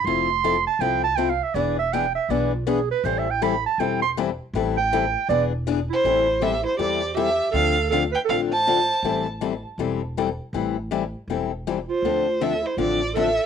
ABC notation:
X:1
M:4/4
L:1/16
Q:"Swing" 1/4=160
K:Am
V:1 name="Violin"
z16 | z16 | z16 | z12 z2 c2- |
c4 e2 c2 d4 e4 | f4 f2 g2 f2 a6- | a2 z12 z2 | z12 z2 c2- |
c4 e2 c2 d4 e4 |]
V:2 name="Clarinet"
c'6 a2 g2 a2 (3g2 f2 e2 | d2 e2 g2 e2 d2 F2 ^G2 B2 | (3c2 e2 g2 b2 a2 g2 c'2 z4 | z2 g6 d2 z4 E2- |
E4 G2 E2 G4 G4 | A4 A2 B2 A2 c6- | c2 z12 z2 | z12 z2 F2- |
F4 A2 E2 F4 A4 |]
V:3 name="Steel-string acoustic guitar"
[F,CEA]2 z2 [F,CEA] z3 [F,CEA]2 z2 [F,CEA] z3 | [E,B,D^G]2 z2 [E,B,DG] z3 [E,B,DG]2 z2 [E,B,DG] z3 | [E,G,CEA]2 z2 [E,G,CEA] z3 [E,G,CEA]2 z2 [E,G,CEA] z3 | [E,G,CEA]2 z2 [E,G,CEA] z3 [E,B,D^G]2 z2 [E,B,DG] z3 |
[E,G,CEA]2 z2 [E,G,CEA] z3 [E,G,CEA]2 z2 [E,G,CEA] z3 | [D,F,CDA]2 z2 [D,F,CDA] z3 [D,F,CDA]2 z2 [D,F,CDA] z3 | [E,G,CEA]2 z2 [E,G,CEA] z3 [E,G,CEA]2 z2 [E,G,CEA] z3 | [E,G,CEA]2 z2 [E,G,CEA] z3 [E,G,CEA]2 z2 [E,G,CEA] z3 |
[D,F,CDA]2 z2 [D,F,CDA] z3 [D,F,CDA]2 z2 [D,F,CDA] z3 |]
V:4 name="Upright bass" clef=bass
F,,,8 C,,8 | E,,,8 B,,,8 | A,,,8 E,,,8 | A,,,8 E,,,8 |
A,,,8 E,,8 | D,,8 A,,,8 | A,,,8 E,,,8 | A,,,8 E,,,8 |
D,,8 A,,,8 |]